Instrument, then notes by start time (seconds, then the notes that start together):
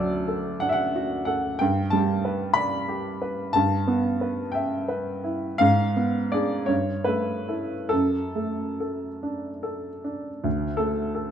upright piano
Already playing: D2 F#3 A4 D5
0.28 A4
0.60 D4 F#5
0.69 E5 F#5
0.96 F#4
1.25 A4 F#5
1.59 G2 G5
1.90 G3 A5
2.25 B4
2.54 D5 B5
2.89 G4
3.22 B4
3.53 G2 A5
3.87 B3
4.21 B4
4.52 E5 G5
4.88 B4
5.24 E4
5.58 G#2 F5
5.96 B3
6.32 D4 G#4 D5
6.66 G2 C#5
7.04 A3 B4
7.48 E4 A4
7.89 F#2 A4
8.35 A3
8.80 A4
9.23 D4
9.63 A4
10.04 D4
10.44 D2
10.77 A3 A4
11.15 A4